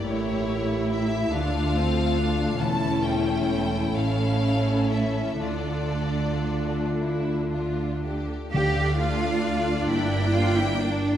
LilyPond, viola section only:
\new Staff \with { instrumentName = "Viola section" } { \time 6/8 \key d \minor \tempo 4. = 44 << { e'4. d'8 c'8 d'8 | cis'4. cis'4. | d'2. | d'2. | } \\ { a4. a4. | cis'4. a4. | a2. | a4. bes4. | } >> }